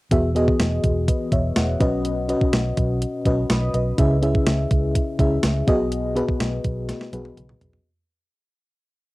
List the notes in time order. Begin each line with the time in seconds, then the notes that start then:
0.11 E1 E3 B3 F#4 G#4 E5, kick, closed hi-hat
0.35 B3 F#4 G#4 D#5, closed hi-hat
0.48 kick
0.60 E1, snare, closed hi-hat
0.84 E1, kick, closed hi-hat
1.08 B4 D#5, kick, closed hi-hat
1.32 E1 C#5 E5, kick, closed hi-hat
1.56 E1 D#5 F#5, snare, closed hi-hat
1.80 B1 B2 C#4 F#4 B4 D#5, kick, closed hi-hat
2.05 closed hi-hat
2.29 C#4 F#4 B4 D#5, closed hi-hat
2.41 kick
2.53 B1, snare, closed hi-hat
2.77 B1, kick, closed hi-hat
3.02 closed hi-hat
3.25 B1 C#4 F#4 B4 D#5, kick, closed hi-hat
3.50 B1 B5 D#6, snare, closed hi-hat
3.74 B1 B4 D#5, closed hi-hat
3.98 C#2 C#3 C#4 E4 G#4 E5, kick, closed hi-hat
4.22 C#4 E4 G#4 E5, closed hi-hat
4.35 kick
4.47 C#2, snare, closed hi-hat
4.71 C#2, kick, closed hi-hat
4.95 kick, closed hi-hat
5.19 C#2 C#4 E4 G#4 E5, kick, closed hi-hat
5.43 C#2, snare, closed hi-hat
5.67 B1 B2 B3 F#4 G#4 D#5, kick, closed hi-hat
5.92 closed hi-hat
6.15 B3 F#4 G#4 B4, closed hi-hat
6.29 kick
6.40 B1, snare, closed hi-hat
6.64 B1, kick, closed hi-hat
6.89 snare, closed hi-hat
7.01 snare
7.12 B1 B3 F#4 G#4 B4, closed hi-hat, high tom
7.25 high tom
7.37 B1, closed hi-hat, mid tom
7.49 mid tom
7.61 B1, closed hi-hat, floor tom
7.73 floor tom